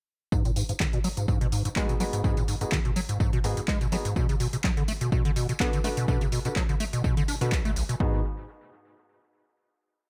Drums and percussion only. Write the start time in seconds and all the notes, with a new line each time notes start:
0.32 kick, tambourine
0.45 closed hi-hat, tambourine
0.56 open hi-hat, tambourine
0.69 closed hi-hat, tambourine
0.80 kick, clap, tambourine
0.93 closed hi-hat
1.04 open hi-hat, tambourine
1.17 closed hi-hat, tambourine
1.28 kick, tambourine
1.41 closed hi-hat
1.52 open hi-hat, tambourine
1.65 closed hi-hat, tambourine
1.76 kick, clap, tambourine
1.89 closed hi-hat, tambourine
2.00 open hi-hat, tambourine
2.13 closed hi-hat, tambourine
2.24 kick, tambourine
2.37 closed hi-hat, tambourine
2.48 open hi-hat, tambourine
2.61 closed hi-hat, tambourine
2.72 kick, clap, tambourine
2.85 closed hi-hat
2.96 open hi-hat, tambourine
3.09 closed hi-hat, tambourine
3.20 kick, tambourine
3.33 closed hi-hat
3.44 open hi-hat, tambourine
3.57 closed hi-hat, tambourine
3.68 kick, clap, tambourine
3.81 closed hi-hat, tambourine
3.92 open hi-hat, tambourine
4.05 closed hi-hat, tambourine
4.16 kick, tambourine
4.29 closed hi-hat, tambourine
4.40 open hi-hat, tambourine
4.53 closed hi-hat, tambourine
4.64 kick, clap, tambourine
4.77 closed hi-hat
4.88 open hi-hat, tambourine
5.01 closed hi-hat, tambourine
5.12 kick, tambourine
5.25 closed hi-hat
5.36 open hi-hat, tambourine
5.49 closed hi-hat, tambourine
5.60 kick, clap, tambourine
5.73 closed hi-hat, tambourine
5.84 open hi-hat, tambourine
5.97 closed hi-hat, tambourine
6.08 kick, tambourine
6.21 closed hi-hat, tambourine
6.32 open hi-hat, tambourine
6.45 closed hi-hat, tambourine
6.56 kick, clap, tambourine
6.69 closed hi-hat, tambourine
6.80 open hi-hat, tambourine
6.93 closed hi-hat, tambourine
7.04 kick, tambourine
7.17 closed hi-hat, tambourine
7.28 open hi-hat, tambourine
7.41 closed hi-hat, tambourine
7.52 kick, clap, tambourine
7.65 closed hi-hat, tambourine
7.76 open hi-hat, tambourine
7.89 closed hi-hat, tambourine
8.00 kick